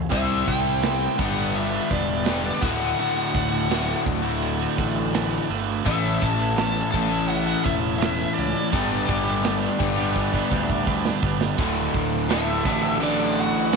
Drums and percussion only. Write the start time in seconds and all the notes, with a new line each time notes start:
0.12 kick, crash
0.48 kick, ride
0.83 snare, ride
1.19 kick, ride
1.55 ride
1.91 kick, ride
2.26 snare, ride
2.62 kick, ride
2.98 ride
3.35 kick, ride
3.71 snare, ride
4.06 kick, ride
4.42 ride
4.78 kick, ride
5.14 snare, ride
5.51 ride
5.86 kick, ride
6.22 kick, ride
6.58 snare, ride
6.94 kick, ride
7.30 ride
7.66 kick, ride
8.02 snare, ride
8.38 ride
8.73 kick, ride
9.09 kick, ride
9.44 snare, ride
9.80 kick, ride
10.16 kick
10.34 kick
10.52 kick
10.70 kick
10.87 kick
11.05 snare
11.23 kick
11.41 snare
11.58 kick, crash
11.94 kick, crash
12.30 snare, crash
12.65 kick, crash
13.01 crash
13.37 crash
13.73 crash